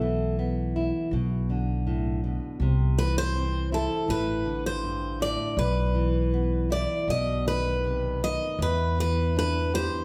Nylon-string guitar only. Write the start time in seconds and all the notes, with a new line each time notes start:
Already playing: A3 B3 E4
0.02 E3
0.39 B3
0.76 E4
1.13 B2
1.50 D3
1.87 A2
2.24 B2
2.62 C3
2.98 E3
3.35 C4
3.72 E4
4.08 A2
4.45 D3
4.83 G2
5.20 A2
5.58 B2
5.95 E3
6.34 B3
6.70 E4
7.08 B2
7.45 D#3
7.84 C3
8.23 D#3
8.60 E2
8.98 E3
9.36 D4
9.74 G4